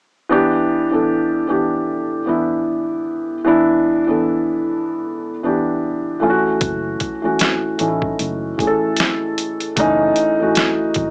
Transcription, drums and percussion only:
6.61 kick, closed hi-hat
7.00 kick, closed hi-hat
7.39 snare, closed hi-hat
7.79 closed hi-hat
8.02 kick
8.19 closed hi-hat
8.59 kick, closed hi-hat
8.97 snare, closed hi-hat
9.38 closed hi-hat
9.60 closed hi-hat
9.77 kick, closed hi-hat
10.16 closed hi-hat
10.55 snare, closed hi-hat
10.94 kick, closed hi-hat

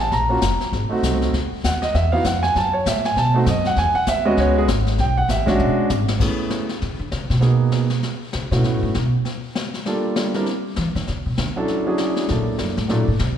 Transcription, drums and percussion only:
0.12 brush sweep, kick, snare
0.41 kick, snare, hi-hat pedal
0.61 snare
0.72 brush sweep, kick, snare
1.03 kick, snare, hi-hat pedal
1.22 snare
1.33 brush sweep, kick, snare
1.64 kick, snare, hi-hat pedal
1.82 snare
1.94 brush sweep, kick, snare
2.24 kick, snare, hi-hat pedal
2.43 snare
2.55 brush sweep, kick, snare
2.86 kick, snare, hi-hat pedal
3.05 snare
3.16 brush sweep, kick, snare
3.46 kick, snare, hi-hat pedal
3.65 snare
3.76 brush sweep, kick, snare
4.06 kick, snare, hi-hat pedal
4.37 brush sweep, kick, snare
4.68 kick, snare, hi-hat pedal
4.87 snare
4.98 brush sweep, kick, snare
5.29 kick, snare, hi-hat pedal
5.47 kick, snare
5.59 mid tom
5.90 hi-hat pedal, mid tom
6.08 snare
6.20 brush sweep, kick, snare, crash
6.50 snare
6.69 snare
6.81 brush sweep, snare
7.12 snare
7.30 snare
7.42 brush sweep, snare
7.72 snare
7.90 snare
8.03 brush sweep, snare
8.33 snare
8.52 snare
8.64 brush sweep, snare
8.94 snare
9.25 brush sweep, snare
9.55 snare
9.74 snare
9.86 brush sweep, snare
10.16 snare
10.34 snare
10.46 brush sweep, snare
10.76 snare
10.96 snare
11.07 brush sweep, snare
11.38 snare
11.68 brush sweep, snare
11.98 snare
12.16 snare
12.28 brush sweep, snare
12.59 snare
12.77 snare
12.89 brush sweep, snare
13.19 snare

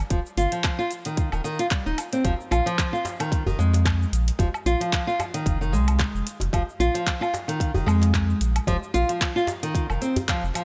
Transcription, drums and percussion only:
0.10 kick, closed hi-hat, cabasa
0.26 cabasa
0.37 closed hi-hat, cabasa
0.52 closed hi-hat, cabasa
0.64 kick, clap, closed hi-hat, cabasa, low woodblock
0.79 cabasa
0.91 closed hi-hat, cabasa
1.05 closed hi-hat, cabasa
1.17 kick, closed hi-hat, cabasa
1.32 cabasa, low woodblock
1.45 cabasa
1.59 closed hi-hat, cabasa
1.71 kick, clap, closed hi-hat, cabasa
1.87 cabasa
1.98 closed hi-hat, cabasa, low woodblock
2.13 closed hi-hat, cabasa
2.25 kick, closed hi-hat, djembe tone, cabasa
2.41 cabasa
2.52 closed hi-hat, cabasa, low woodblock
2.67 closed hi-hat, cabasa
2.78 kick, clap, closed hi-hat, cabasa
2.95 cabasa
3.05 closed hi-hat, djembe slap, cabasa
3.20 closed hi-hat, cabasa, low woodblock
3.32 kick, closed hi-hat, cabasa
3.46 djembe bass, cabasa
3.60 cabasa
3.73 closed hi-hat, djembe slap, cabasa
3.85 kick, clap, closed hi-hat, cabasa, low woodblock
4.02 cabasa
4.13 closed hi-hat, cabasa
4.28 closed hi-hat, cabasa
4.39 kick, closed hi-hat, djembe tone, cabasa
4.54 cabasa, low woodblock
4.66 closed hi-hat, cabasa
4.81 closed hi-hat, cabasa
4.93 kick, clap, closed hi-hat, cabasa
5.09 cabasa
5.20 closed hi-hat, djembe slap, djembe tone, cabasa, low woodblock
5.34 closed hi-hat, cabasa
5.46 kick, closed hi-hat, cabasa
5.62 cabasa
5.73 djembe slap, cabasa
5.88 closed hi-hat, cabasa, low woodblock
5.99 kick, clap, closed hi-hat, djembe slap, cabasa
6.15 cabasa
6.27 closed hi-hat, cabasa
6.40 closed hi-hat, djembe slap, djembe tone, cabasa
6.53 kick, closed hi-hat, djembe tone, cabasa, low woodblock
6.69 cabasa
6.80 closed hi-hat, cabasa
6.95 closed hi-hat, cabasa
7.07 kick, clap, closed hi-hat, cabasa
7.22 cabasa, low woodblock
7.34 closed hi-hat, djembe slap, cabasa
7.49 closed hi-hat, cabasa
7.60 kick, closed hi-hat, cabasa
7.74 djembe bass, cabasa
7.88 cabasa, low woodblock
8.02 closed hi-hat, djembe slap, cabasa
8.14 kick, clap, closed hi-hat, cabasa
8.30 cabasa
8.41 closed hi-hat, cabasa
8.56 closed hi-hat, cabasa, low woodblock
8.67 kick, closed hi-hat, djembe tone, cabasa
8.83 cabasa
8.94 closed hi-hat, djembe tone, cabasa
9.09 closed hi-hat, cabasa
9.21 kick, clap, closed hi-hat, cabasa, low woodblock
9.37 cabasa
9.47 closed hi-hat, djembe slap, djembe tone, cabasa
9.63 closed hi-hat, cabasa
9.75 kick, closed hi-hat, cabasa
9.90 cabasa, low woodblock
10.01 closed hi-hat, djembe slap, cabasa
10.16 closed hi-hat, djembe bass, cabasa
10.28 kick, clap, closed hi-hat, djembe slap, cabasa
10.44 cabasa
10.54 closed hi-hat, djembe slap, cabasa, low woodblock

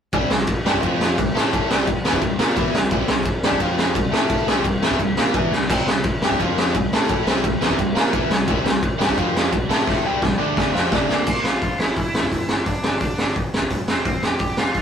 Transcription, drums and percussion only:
0.13 kick, ride
0.31 snare
0.47 kick, ride
0.66 snare
0.74 kick
0.83 kick, ride
1.01 snare
1.18 kick, ride
1.37 snare
1.53 kick, ride
1.71 snare
1.87 kick, ride
2.05 snare
2.13 kick
2.22 kick, ride
2.39 snare
2.57 kick, ride
2.75 snare
2.91 kick, ride
3.08 snare
3.25 kick, ride
3.44 snare
3.52 kick
3.60 kick, ride
3.78 snare
3.95 kick, ride
4.14 snare
4.30 kick, ride
4.48 snare
4.64 kick, ride
4.83 snare
4.90 kick
4.99 kick, ride
5.17 snare
5.34 kick, ride
5.52 snare
5.70 kick, crash, ride
5.88 snare
6.04 kick, ride
6.22 snare
6.31 kick
6.40 kick, ride
6.58 snare
6.75 kick, ride
6.93 snare
7.09 kick, ride
7.27 snare
7.44 kick, ride
7.62 snare
7.70 kick
7.79 kick, ride
7.96 snare
8.13 kick, ride
8.31 snare
8.48 kick, ride
8.66 snare
8.83 kick, ride
9.01 snare
9.09 kick
9.18 kick, ride
9.37 snare
9.53 kick, ride
9.71 snare
9.87 kick, snare
10.22 kick, snare
10.57 kick, snare
10.75 snare
10.92 kick, snare
11.09 snare
11.27 kick, crash
11.45 snare
11.62 kick, open hi-hat
11.80 snare
11.96 kick, open hi-hat
12.15 snare
12.23 kick
12.32 kick, open hi-hat
12.49 snare
12.66 kick, open hi-hat
12.84 snare
13.00 kick, open hi-hat
13.18 snare
13.36 kick, open hi-hat
13.54 snare
13.62 kick
13.70 kick, open hi-hat
13.88 snare
14.05 kick, open hi-hat
14.23 snare
14.39 kick, open hi-hat
14.57 snare
14.74 kick, open hi-hat

